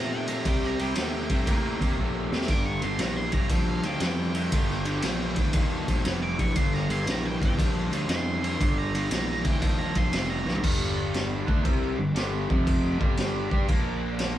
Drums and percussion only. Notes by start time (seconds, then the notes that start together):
0.28 ride
0.45 kick, ride
0.63 snare
0.79 ride
0.95 snare, ride
1.30 kick, ride
1.47 kick, ride
1.81 kick, ride
1.98 kick
2.32 snare
2.41 snare
2.48 kick, ride, splash
2.82 ride
2.99 snare, ride
3.32 kick, ride
3.49 kick, ride
3.83 ride
4.00 snare, ride
4.35 ride
4.52 kick, ride
4.69 snare
4.85 ride
5.02 snare, ride
5.36 kick, ride
5.53 kick, ride
5.88 kick, ride
6.05 snare, ride
6.39 kick, ride
6.56 kick, ride
6.74 snare
6.90 ride
7.07 snare, ride
7.42 kick, ride
7.59 kick, ride
7.93 ride
8.09 snare, ride
8.44 ride
8.61 kick, ride
8.95 ride
9.11 snare, ride
9.45 kick, ride
9.62 kick, ride
9.95 kick, ride
10.13 snare, ride
10.48 snare
10.55 floor tom
10.64 kick, crash
11.14 snare, crash
11.48 kick
11.65 kick, crash
12.16 snare, crash
12.50 kick
12.67 kick, crash
13.01 kick
13.17 snare, crash
13.51 kick
13.69 kick, crash
14.19 snare, crash